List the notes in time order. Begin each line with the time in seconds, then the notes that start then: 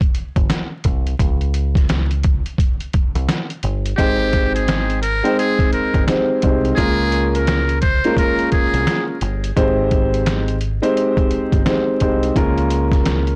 0.01 kick, closed hi-hat
0.15 closed hi-hat
0.36 G1, kick, closed hi-hat
0.50 snare, closed hi-hat
0.84 C2, kick, closed hi-hat
1.07 closed hi-hat
1.19 C#2, kick, closed hi-hat
1.41 closed hi-hat
1.54 closed hi-hat
1.75 kick, snare, closed hi-hat
1.89 snare, closed hi-hat
2.11 closed hi-hat
2.23 kick, closed hi-hat
2.46 closed hi-hat
2.58 kick, closed hi-hat
2.81 closed hi-hat
2.93 kick, closed hi-hat
3.15 C2, closed hi-hat
3.29 snare, closed hi-hat
3.50 closed hi-hat
3.63 G1, closed hi-hat
3.86 closed hi-hat
3.98 G#1 G#3 C4 D#4 G4 C5 G5, kick, closed hi-hat
4.33 kick, closed hi-hat
4.55 G#4, closed hi-hat
4.68 snare, closed hi-hat
4.90 closed hi-hat
5.02 A#4, closed hi-hat
5.23 G#3 C4 D#4 C5 G5, closed hi-hat
5.39 G#4, closed hi-hat
5.59 kick, closed hi-hat
5.73 A#4, closed hi-hat
5.94 G1, kick, closed hi-hat
6.07 G#3 C4 D#4 G4 C5, snare, closed hi-hat
6.42 C2 G#3 C4 D#4 G4 C5, kick, closed hi-hat
6.65 closed hi-hat
6.76 C#2 G#3 A#3 C#4 F4 G#4 A#4, kick, closed hi-hat
7.12 closed hi-hat
7.35 A#4, closed hi-hat
7.47 snare, closed hi-hat
7.69 closed hi-hat
7.82 C5, kick, closed hi-hat
8.04 G#3 A#3 C#4 F4 A#4, closed hi-hat
8.17 A#4, kick, closed hi-hat
8.39 closed hi-hat
8.52 G#4, kick, closed hi-hat
8.74 C2, closed hi-hat
8.87 snare, closed hi-hat
9.21 G1, closed hi-hat
9.44 closed hi-hat
9.56 G#1 G#3 C4 D#4 G4 C5, kick, closed hi-hat
9.91 kick, closed hi-hat
10.14 closed hi-hat
10.26 snare, closed hi-hat
10.48 closed hi-hat
10.61 closed hi-hat
10.82 G#3 C4 D#4 G4 C5, closed hi-hat
10.97 closed hi-hat
11.17 kick, closed hi-hat
11.31 closed hi-hat
11.52 G1, kick, closed hi-hat
11.65 G#3 C4 D#4 G4 C5, snare, closed hi-hat
12.00 C2 G#3 C4 D#4 G4 C5, kick, closed hi-hat
12.23 closed hi-hat
12.36 C#2 G#3 A#3 C#4 F4 A#4, kick, closed hi-hat
12.58 closed hi-hat
12.70 closed hi-hat
12.92 kick, snare, closed hi-hat
13.05 snare, closed hi-hat
13.27 closed hi-hat